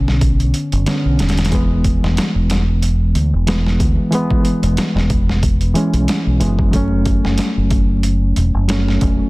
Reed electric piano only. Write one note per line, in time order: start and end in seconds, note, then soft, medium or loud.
0.00 0.86 D3 medium
0.00 0.87 B3 medium
0.00 0.88 C#4 loud
0.86 1.48 D3 medium
0.86 1.49 B3 medium
0.86 1.49 C#4 medium
1.50 3.43 E3 medium
1.50 3.44 G#3 medium
1.55 3.46 B3 medium
3.47 4.09 E3 medium
3.47 4.10 G#3 medium
3.47 4.10 B3 medium
4.10 5.72 E3 medium
4.10 5.73 G#3 medium
4.15 5.74 B3 loud
5.74 6.37 E3 medium
5.74 6.38 G#3 medium
5.74 6.38 C#4 medium
6.40 6.70 E3 medium
6.40 6.70 G#3 medium
6.40 6.71 B3 medium
6.71 8.65 F#3 medium
6.71 8.66 A3 medium
6.76 8.67 C#4 medium
8.68 9.30 F#3 medium
8.68 9.30 A3 medium
8.68 9.30 C#4 medium